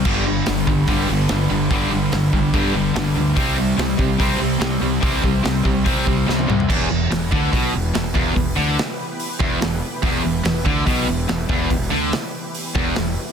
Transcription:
<<
  \new Staff \with { instrumentName = "Analog synth pad" } { \time 4/4 \key e \minor \tempo 4 = 144 <d b g' b'>1~ | <d b g' b'>1 | <e c' g' c''>1~ | <e c' g' c''>1 |
<e b g' b'>1~ | <e b g' b'>1~ | <e b g' b'>1~ | <e b g' b'>1 | }
  \new Staff \with { instrumentName = "Distorted electric guitar" } { \clef bass \time 4/4 \key e \minor <g, d g>8 <g, d>8 <g, d>8 <g, d>8 <g, d g>8 <g, d>8 <g, d>8 <g, d>8 | <g, d g>8 <g, d>8 <g, d>8 <g, d>8 <g, d g>8 <g, d>8 <g, d>8 <g, d>8 | <c g c'>8 <c g>8 <c g>8 <c g>8 <c g c'>8 <c g>8 <c g>8 <c g>8 | <c g c'>8 <c g>8 <c g>8 <c g>8 <c g c'>8 <c g>8 <c g>8 <c g>8 |
e,8 e,8 e,8 d8 b,8 e,8 e,8 e,8 | e,8 d8 r4. e,8 e,8 r8 | e,8 e,8 e,8 d8 b,8 e,8 e,8 e,8 | e,8 d8 r4. e,8 e,8 r8 | }
  \new Staff \with { instrumentName = "Distorted electric guitar" } { \clef bass \time 4/4 \key e \minor <g, d g>8 <g, d>8 <g, d>8 <g, d>8 <g, d g>8 <g, d>8 <g, d>8 <g, d>8 | <g, d g>8 <g, d>8 <g, d>8 <g, d>8 <g, d g>8 <g, d>8 <g, d>8 <g, d>8 | <c g c'>8 <c g>8 <c g>8 <c g>8 <c g c'>8 <c g>8 <c g>8 <c g>8 | <c g c'>8 <c g>8 <c g>8 <c g>8 <c g c'>8 <c g>8 <c g>8 <c g>8 |
e,8 e,8 e,8 d8 b,8 e,8 e,8 e,8 | e,8 d8 r4. e,8 e,8 r8 | e,8 e,8 e,8 d8 b,8 e,8 e,8 e,8 | e,8 d8 r4. e,8 e,8 r8 | }
  \new Staff \with { instrumentName = "Distorted electric guitar" } { \clef bass \time 4/4 \key e \minor <g, d g>2~ <g, d g>8 <g, d g>8 <g, d g>4 | <g, d g>2~ <g, d g>8 <g, d g>8 <g, d g>4 | <c g c'>2~ <c g c'>8 <c g c'>8 <c g c'>4 | <c g c'>2~ <c g c'>8 <c g c'>8 <c g c'>4 |
e,8 e,8 e,8 d8 b,8 e,8 e,8 e,8 | e,8 d8 r4. e,8 e,8 r8 | e,8 e,8 e,8 d8 b,8 e,8 e,8 e,8 | e,8 d8 r4. e,8 e,8 r8 | }
  \new Staff \with { instrumentName = "Fingered electric bass" } { \clef bass \time 4/4 \key e \minor g,,4 g,,8 g,,8 g,,8 g,,8 g,,8 g,,8 | g,,8 g,,8 g,,8 g,,8 g,8 g,,8 g,,8 d,8 | c,4 c,8 c,8 c,8 c,8 c,8 c,8 | c,8 c,8 c,8 c,8 c8 c,8 c,8 c,8 |
e,,8 e,,8 e,,8 d,8 b,,8 e,,8 r8 e,,8 | e,,8 d,8 r4. e,,8 e,,8 r8 | e,,8 e,,8 e,,8 d,8 b,,8 e,,8 e,,8 e,,8 | e,,8 d,8 r4. e,,8 e,,8 r8 | }
  \new DrumStaff \with { instrumentName = "Drums" } \drummode { \time 4/4 <cymc bd>4 <hho sn>8 bd8 <hho bd>4 <hho sn>4 | <hho bd>4 <hho sn>8 bd8 <hho bd>4 <hho sn>4 | <hho bd>4 <hho sn>8 bd8 <hho bd>4 <hho sn>4 | <hho bd>8 bd8 <hho sn>8 bd8 <hho bd>8 bd8 sn16 tommh16 toml16 tomfh16 |
<cymc bd>4 <hho sn>8 bd8 <hho bd>4 <hho sn>8 bd8 | <hho bd>4 <hho sn>4 hho8 bd8 <hho sn>4 | <hho bd>4 <hho sn>8 bd8 <hho bd>4 <hho sn>8 bd8 | <hho bd>4 <hho sn>4 hho8 bd8 <hho sn>4 | }
>>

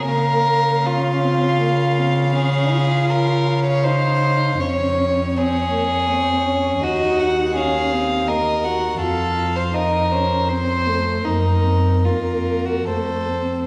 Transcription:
<<
  \new Staff \with { instrumentName = "Violin" } { \time 3/4 \key bes \minor \tempo 4 = 80 f''2.~ | f''2. | des''2. | ees''8 ges''8 f''4 ees''8 ges''8 |
f''4 ees''8 c''4. | bes'2 c''4 | }
  \new Staff \with { instrumentName = "Violin" } { \time 3/4 \key bes \minor bes'4 f'2 | aes'4 bes'8. des''16 c''4 | des''4 aes'2 | ges'4 aes'4 bes'4 |
a'8. c''16 bes'4 c''4 | ees'4 f'8. ges'16 a'4 | }
  \new Staff \with { instrumentName = "Viola" } { \time 3/4 \key bes \minor bes4 des'8 c'8 bes8 c'8 | des'8 f'4. ees'4 | des'4 c'8 bes8 c'8 des'8 | ees'4 des'8 c'8 bes8 ges'8 |
f'4 ees'8 des'8 c'8 a8 | bes8 c'8 bes4 a8 c'8 | }
  \new Staff \with { instrumentName = "Cello" } { \clef bass \time 3/4 \key bes \minor des2.~ | des2. | f,2. | ees,2. |
f,2. | ges,4 f,4 f,4 | }
>>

